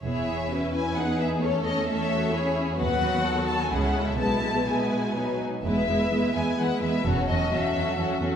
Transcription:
<<
  \new Staff \with { instrumentName = "Violin section" } { \time 3/4 \key e \major \tempo 4 = 129 e''4. gis''8 fis''8 e''8 | cis''8 dis''8 e''4. r8 | fis''4. a''16 gis''16 fis''8. e''16 | a''4 gis''4. r8 |
e''4. gis''8 fis''8 e''8 | cis''8 dis''8 e''4. r8 | }
  \new Staff \with { instrumentName = "Violin section" } { \time 3/4 \key e \major << { cis''4 b'4 b'4 | cis''4 cis''4 cis''4 | b'4 a'4 gis'8 a'8 | b'4 b'4 b'8 r8 |
b'8 b'8 b'8 b'8 b'8 b'8 | a'8 a'8 a'8 a'8 a'8 a'8 | } \\ { gis'4 e'4 gis'4 | a'4 a'4 gis'4 | fis'2 e'4 | e'4 e'4 dis'8 r8 |
e'8 e'8 e'8 e'8 e'8 e'8 | fis'8 fis'8 fis'8 fis'8 fis'8 fis'8 | } >> }
  \new Staff \with { instrumentName = "Viola section" } { \time 3/4 \key e \major << { e'4 fis'8 e'8 dis'4 | cis'4 cis'8 fis'8 e'4 | b2 cis'4 | b4 b4 b8 r8 |
b8 b8 b8 b8 b8 b8 | cis'8 cis'8 cis'8 cis'8 cis'8 cis'8 | } \\ { b4 cis'4 b4 | a4 a4 cis'4 | fis2 gis4 | gis4 gis4 fis8 r8 |
gis8 gis8 gis8 gis8 gis8 gis8 | fis8 fis8 fis8 fis8 fis8 fis8 | } >> }
  \new Staff \with { instrumentName = "Cello section" } { \clef bass \time 3/4 \key e \major e,2.~ | e,2. | dis,2 cis4 | b,2~ b,8 r8 |
e,8 e,8 e,8 e,8 e,8 e,8 | e,8 e,8 e,8 e,8 e,8 e,8 | }
  \new Staff \with { instrumentName = "Double bass section" } { \clef bass \time 3/4 \key e \major e,,4 r2 | r2. | dis,4 r4 cis,4 | b,,4 r2 |
e,,8 r2 r8 | e,,8 r2 r8 | }
>>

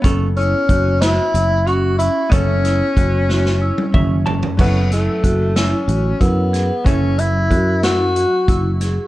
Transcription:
<<
  \new Staff \with { instrumentName = "Vibraphone" } { \time 7/8 \key fis \minor \tempo 4 = 92 cis'8 e'8 fis'8 fis'8 e'8 cis'8 cis'8 | cis'8 e'8 fis'8 fis'8 e'8 cis'8 cis'8 | cis'8 e'8 fis'8 e'8 fis'8 e'8 gis'8 | cis'8 e'8 fis'8 e'8 fis'8 e'8 gis'8 | }
  \new Staff \with { instrumentName = "Hollow-body jazz guitar" } { \time 7/8 \key fis \minor << { r2. r8 | r2 r8 e''8 a''8 | r2. r8 | r2. r8 | } \\ { <b cis' a'>2.~ <b cis' a'>8 | <b cis' a'>2.~ <b cis' a'>8 | <fis cis' e' a'>2.~ <fis cis' e' a'>8 | <fis cis' e' a'>2.~ <fis cis' e' a'>8 | } >> }
  \new Staff \with { instrumentName = "Tenor saxophone" } { \time 7/8 \key fis \minor r8 cis'4 e'4 fis'8 e'8 | cis'2. r8 | b8 a4 cis'4 b4 | cis'8 e'4 fis'4. r8 | }
  \new Staff \with { instrumentName = "Fretless electric bass" } { \clef bass \time 7/8 \key fis \minor fis,,4 fis,,4 fis,,4. | fis,,4 fis,,4. fis,,4 | fis,,4 fis,,4 a,,8 fis,4 | fis,,4 fis,4. fis,,4 | }
  \new DrumStaff \with { instrumentName = "Drums" } \drummode { \time 7/8 <hh bd>8 hh8 <hh bd>8 <hh sn>8 hh8 hh8 hh8 | <hh bd>8 <hh sn>8 <hh bd>8 sn16 sn8 tommh16 <bd toml>8 tomfh16 tomfh16 | <cymc bd>8 <hh sn>8 <hh bd>8 <hh sn>8 hh8 <hh bd>8 <hh sn>8 | <hh bd>8 hh8 <hh bd>8 <hh sn>8 hh8 <hh bd>8 <hh sn>8 | }
>>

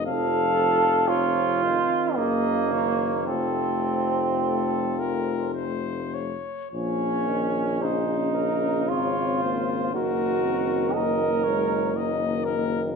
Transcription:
<<
  \new Staff \with { instrumentName = "Cornet" } { \time 3/4 \key f \phrygian \tempo 4 = 56 f''4 des''8 c''8 ees''8 des''8 | a'4 a'8 bes'8 c''8 des''8 | des''4 c''8 bes'8 des''8 c''8 | bes'4 ees''8 des''8 ees''8 bes'8 | }
  \new Staff \with { instrumentName = "Flugelhorn" } { \time 3/4 \key f \phrygian a'4 f'4 bes4 | c'2 r4 | des'4 ees'4 f'4 | ges'4 bes'4. r8 | }
  \new Staff \with { instrumentName = "Euphonium" } { \time 3/4 \key f \phrygian c'8. r16 c'4 bes4 | a2~ a8 r8 | bes4 des'4 c'8 bes8 | bes8 c'8 bes8 aes8 bes4 | }
  \new Staff \with { instrumentName = "Euphonium" } { \clef bass \time 3/4 \key f \phrygian f8. r16 f8 ees8 des8 ees8 | f2~ f8 r8 | f8 ees8 des2 | ees2 ees4 | }
  \new Staff \with { instrumentName = "Tuba" } { \clef bass \time 3/4 \key f \phrygian f,,4.~ f,,16 r16 ges,,4 | f,,2~ f,,8 r8 | bes,,2 aes,,4 | ges,,2. | }
>>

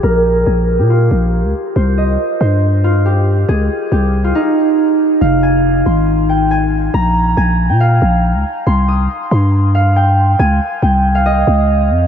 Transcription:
<<
  \new Staff \with { instrumentName = "Harp" } { \time 4/4 \key f \minor \tempo 4 = 139 bes'4 aes'8. g'16 f'2 | c''8 ees''4 c''4 f'8 g'4 | aes'4 g'8. f'16 ees'2 | f''8 aes''4 c'''4 g''8 aes''4 |
bes''4 aes''8. g''16 f''2 | c'''8 ees'''4 c'''4 f''8 g''4 | aes''4 g''8. f''16 ees''2 | }
  \new Staff \with { instrumentName = "808-style bass" } { \clef bass \time 4/4 \key f \minor bes,,4 bes,,8. bes,8. bes,,8. des,16 r8 | c,4 r8 g,2~ g,8 | des,8 r8 c,4 r2 | f,,4. aes,,2~ aes,,8 |
bes,,4 bes,,8. bes,8. bes,,8. des,16 r8 | c,4 r8 g,2~ g,8 | des,8 r8 c,4. des,4 f,8 | }
>>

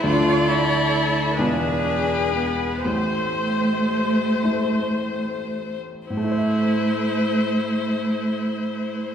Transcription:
<<
  \new Staff \with { instrumentName = "Viola" } { \time 6/8 \key a \minor \tempo 4. = 39 d''4. b'4. | c''2~ c''16 r8. | e'2. | }
  \new Staff \with { instrumentName = "Violin" } { \time 6/8 \key a \minor a'4. gis'4. | c''2~ c''8. r16 | c''2. | }
  \new Staff \with { instrumentName = "Cello" } { \time 6/8 \key a \minor f'8 e'4 d'4 b8 | a2~ a8 r8 | a2. | }
  \new Staff \with { instrumentName = "Grand piano" } { \time 6/8 \key a \minor <d, d a d' d''>4. <e,, e, gis f' b'>4. | <a,, a,>4. <a e' c''>4. | <a, a e' c'' e''>2. | }
>>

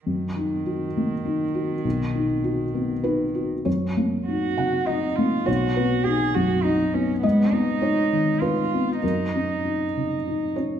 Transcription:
<<
  \new Staff \with { instrumentName = "Cello" } { \time 3/4 \key fis \major \tempo 4 = 100 dis2.~ | dis2~ dis8 r8 | r4 fis'4 dis'8 eis'8 | fis'4 gis'8 fis'8 dis'8 cis'8 |
b8 dis'4. eis'4 | dis'2~ dis'8 r8 | }
  \new Staff \with { instrumentName = "Felt piano" } { \time 3/4 \key fis \major << { r2. | r2 b'4 | cis''4. fis''8 dis''4 | cis''8 b'4 r4. |
dis''4 cis''4 b'4 | ais'2~ ais'8 cis''8 | } \\ { fis,8 dis'8 fis'8 ais8 dis'8 fis'8 | b,,8 dis'8 fis'8 b8 dis'8 fis'8 | fis,8 ais8 dis'8 cis8 dis'8 ais8 | b,,8 b8 dis'8 fis,8 dis'8 b8 |
gis,8 b8 dis'8 dis8 dis'8 b8 | fis,8 cis'8 dis'8 cis8 dis'8 cis'8 | } >> }
>>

